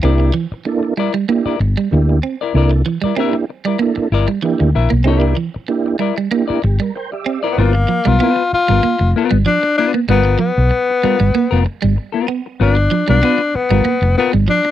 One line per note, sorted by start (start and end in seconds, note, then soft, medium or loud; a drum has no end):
0.03 0.30 C2 loud
0.03 0.31 A#3 medium
0.03 0.14 C4 medium
0.03 0.31 D4 medium
0.03 0.32 E4 medium
0.03 0.31 E4 medium
0.03 0.31 G4 loud
0.03 0.32 A#4 medium
0.03 0.33 D5 medium
0.20 muted clean electric guitar stroke soft
0.34 0.45 E3 medium
0.52 muted fingered electric bass stroke soft
0.52 muted clean electric guitar stroke soft
0.65 0.94 A#3 medium
0.65 0.94 D4 medium
0.65 0.94 E4 medium
0.65 0.94 A4 loud
0.65 muted clean electric guitar stroke soft
0.83 muted clean electric guitar stroke medium
0.97 1.09 G3 medium
0.97 1.14 E4 medium
0.97 1.15 A#4 medium
0.97 1.14 D5 medium
1.14 1.24 G3 medium
1.14 muted clean electric guitar stroke soft
1.28 1.56 A#3 medium
1.28 1.40 A#3 medium
1.28 1.56 D4 medium
1.28 1.56 E4 medium
1.28 1.57 G4 medium
1.28 muted clean electric guitar stroke soft
1.45 1.60 E4 medium
1.45 1.60 A#4 medium
1.45 1.60 D5 medium
1.45 muted fingered electric bass stroke soft
1.60 1.74 G1 medium
1.60 muted clean electric guitar stroke soft
1.77 1.87 G3 medium
1.77 muted clean electric guitar stroke soft
1.91 2.18 D2 medium
1.91 2.19 A#3 loud
1.91 2.19 D4 medium
1.91 2.20 E4 medium
1.91 2.20 G4 loud
1.91 muted clean electric guitar stroke soft
2.09 muted clean electric guitar stroke medium
2.23 2.35 C4 medium
2.41 2.54 E4 medium
2.41 2.55 A#4 medium
2.41 2.55 D5 medium
2.54 2.81 C2 loud
2.54 2.82 A#3 medium
2.54 2.82 D4 medium
2.54 2.82 E4 medium
2.54 2.71 E4 medium
2.54 2.82 A4 medium
2.54 2.72 A#4 medium
2.54 2.72 D5 medium
2.73 muted clean electric guitar stroke medium
2.86 2.97 E3 medium
2.86 muted clean electric guitar stroke soft
3.02 3.12 G3 medium
3.02 3.15 A#4 medium
3.02 3.14 D5 medium
3.02 muted fingered electric bass stroke soft
3.06 3.16 E4 medium
3.16 3.45 A#3 medium
3.16 3.28 C4 medium
3.16 3.45 D4 medium
3.16 3.45 E4 medium
3.16 3.34 E4 medium
3.16 3.45 G4 loud
3.16 3.35 A#4 medium
3.16 3.35 E5 loud
3.33 muted clean electric guitar stroke soft
3.50 muted clean electric guitar stroke soft
3.65 3.75 G3 medium
3.65 3.78 E4 soft
3.65 3.78 A#4 medium
3.65 3.77 D5 medium
3.79 3.91 A#3 medium
3.79 4.08 A#3 medium
3.79 4.08 D4 medium
3.79 4.08 E4 medium
3.79 4.08 A4 medium
3.79 muted clean electric guitar stroke soft
3.97 muted clean electric guitar stroke medium
3.97 muted fingered electric bass stroke soft
4.12 4.26 G1 medium
4.12 4.28 E4 medium
4.12 4.29 A#4 medium
4.12 4.28 D5 loud
4.28 4.38 G3 medium
4.28 muted clean electric guitar stroke soft
4.42 4.54 E3 medium
4.42 4.71 A#3 loud
4.42 4.71 D4 medium
4.42 4.71 E4 medium
4.42 4.71 G4 loud
4.42 muted clean electric guitar stroke soft
4.59 4.73 D2 medium
4.59 muted clean electric guitar stroke medium
4.75 4.89 A#1 medium
4.75 4.91 E4 medium
4.75 4.91 A#4 medium
4.75 4.92 E5 medium
4.90 5.07 B1 medium
4.90 5.01 A#3 medium
5.04 5.33 C2 medium
5.04 5.33 A#3 medium
5.04 5.16 C4 medium
5.04 5.33 D4 medium
5.04 5.18 D#4 medium
5.04 5.33 E4 medium
5.04 5.34 G4 loud
5.04 5.19 A4 medium
5.04 5.20 C#5 medium
5.18 5.35 E4 medium
5.18 5.36 A#4 medium
5.18 5.36 D5 medium
5.18 muted clean electric guitar stroke soft
5.37 5.48 E3 medium
5.54 muted clean electric guitar stroke medium
5.54 muted fingered electric bass stroke soft
5.68 5.96 A#3 loud
5.68 5.96 D4 medium
5.68 5.97 E4 medium
5.68 5.97 G4 loud
5.68 muted clean electric guitar stroke soft
5.86 muted clean electric guitar stroke soft
5.99 6.11 G3 medium
5.99 6.16 E4 medium
5.99 6.17 A#4 medium
5.99 6.16 D5 medium
6.17 6.28 G3 medium
6.17 muted clean electric guitar stroke soft
6.31 6.43 A#3 medium
6.31 6.59 A#3 medium
6.31 6.59 D4 medium
6.31 6.60 E4 medium
6.31 6.60 G4 medium
6.31 muted clean electric guitar stroke medium
6.48 6.62 E4 medium
6.48 6.63 A#4 medium
6.48 6.62 D5 medium
6.48 muted fingered electric bass stroke soft
6.63 6.78 G1 medium
6.63 6.79 G4 medium
6.63 muted clean electric guitar stroke medium
6.80 6.90 G3 medium
6.80 6.94 A#4 medium
6.80 muted clean electric guitar stroke soft
6.95 7.11 A#4 medium
6.95 7.11 C5 medium
6.95 7.11 G5 medium
6.95 muted clean electric guitar stroke soft
7.12 7.42 G4 medium
7.12 7.55 D5 medium
7.12 7.42 E5 medium
7.12 muted clean electric guitar stroke soft
7.26 7.37 C4 medium
7.43 7.73 E4 medium
7.43 7.58 E4 medium
7.43 7.58 A#4 medium
7.43 7.73 C5 medium
7.43 7.57 D5 medium
7.52 7.61 B3 medium
7.58 7.84 G1 loud
7.58 8.09 A#3 medium
7.58 7.74 B3 medium
7.58 7.75 F4 medium
7.58 7.74 A#4 medium
7.75 muted clean electric guitar stroke soft
7.88 8.00 F3 medium
7.88 muted clean electric guitar stroke soft
8.05 8.19 B1 medium
8.05 8.15 G3 medium
8.05 8.18 B3 medium
8.05 8.18 F4 medium
8.05 8.53 F4 loud
8.05 8.17 A#4 medium
8.20 8.32 B3 medium
8.20 8.42 B3 medium
8.20 8.42 F4 medium
8.20 8.42 B4 medium
8.36 muted clean electric guitar stroke soft
8.53 9.12 F4 loud
8.53 muted fingered electric bass stroke soft
8.53 muted clean electric guitar stroke soft
8.68 8.81 G1 loud
8.68 8.78 G3 medium
8.68 8.81 B3 medium
8.68 8.81 F4 medium
8.68 8.80 A#4 medium
8.83 8.94 A#3 medium
8.83 muted clean electric guitar stroke soft
9.01 9.13 F1 medium
9.01 muted clean electric guitar stroke medium
9.16 9.36 B3 loud
9.16 9.33 F4 loud
9.16 9.31 A#4 medium
9.31 9.44 G1 medium
9.31 9.41 G3 medium
9.31 muted clean electric guitar stroke soft
9.46 9.57 F3 medium
9.46 9.75 D4 loud
9.46 muted clean electric guitar stroke soft
9.63 muted clean electric guitar stroke soft
9.78 9.99 B3 medium
9.78 9.92 D4 loud
9.78 9.94 F4 medium
9.78 9.94 B4 medium
9.94 10.04 A#3 medium
9.94 muted clean electric guitar stroke soft
10.09 10.35 G1 loud
10.09 10.20 G3 medium
10.09 10.38 B3 medium
10.09 10.39 B3 loud
10.09 10.38 F4 medium
10.09 10.39 A#4 loud
10.25 muted clean electric guitar stroke soft
10.39 10.51 F3 medium
10.39 11.62 B3 loud
10.58 10.70 B1 medium
10.58 muted clean electric guitar stroke soft
10.71 muted clean electric guitar stroke medium
10.90 muted clean electric guitar stroke soft
11.03 11.15 G3 medium
11.03 11.20 B3 medium
11.03 11.20 F4 medium
11.03 11.19 A#4 loud
11.03 muted fingered electric bass stroke soft
11.20 11.33 G1 loud
11.20 11.30 G3 medium
11.20 muted clean electric guitar stroke medium
11.34 11.46 A#3 medium
11.34 muted clean electric guitar stroke soft
11.51 11.64 F1 medium
11.51 11.64 B3 medium
11.51 11.65 F4 medium
11.51 11.65 A#4 medium
11.65 muted clean electric guitar stroke soft
11.82 11.96 G1 medium
11.82 11.92 G3 medium
11.82 muted clean electric guitar stroke medium
11.96 muted clean electric guitar stroke soft
12.12 12.28 B3 medium
12.12 12.28 F4 medium
12.12 12.29 A#4 medium
12.28 12.40 B3 medium
12.28 muted clean electric guitar stroke soft
12.46 muted clean electric guitar stroke soft
12.60 12.87 G1 loud
12.60 12.76 B3 medium
12.60 13.06 D4 medium
12.60 12.77 F4 medium
12.60 12.76 A#4 medium
12.77 muted clean electric guitar stroke soft
12.91 13.03 F3 medium
12.91 muted clean electric guitar stroke soft
13.08 13.21 B1 medium
13.08 13.18 G3 medium
13.08 13.21 B3 soft
13.08 13.57 D4 loud
13.08 13.20 F4 medium
13.08 13.20 A#4 medium
13.23 13.34 B3 medium
13.23 13.39 B3 medium
13.23 13.40 F4 medium
13.23 13.40 B4 loud
13.38 muted clean electric guitar stroke soft
13.54 14.17 B3 loud
13.54 muted clean electric guitar stroke soft
13.54 muted fingered electric bass stroke soft
13.71 13.83 G1 loud
13.71 13.81 G3 medium
13.71 13.83 B3 medium
13.71 13.83 F4 medium
13.71 13.82 A#4 medium
13.85 13.97 A#3 medium
13.85 muted fingered electric bass stroke soft
13.85 muted clean electric guitar stroke soft
14.02 14.14 F1 medium
14.02 muted clean electric guitar stroke medium
14.17 14.34 B3 medium
14.17 14.32 B3 loud
14.17 14.34 F4 loud
14.17 14.33 A#4 loud
14.33 14.46 G1 loud
14.33 14.44 G3 medium
14.33 muted clean electric guitar stroke soft
14.48 14.59 F3 medium
14.48 14.71 D4 loud
14.48 muted clean electric guitar stroke soft
14.65 muted clean electric guitar stroke soft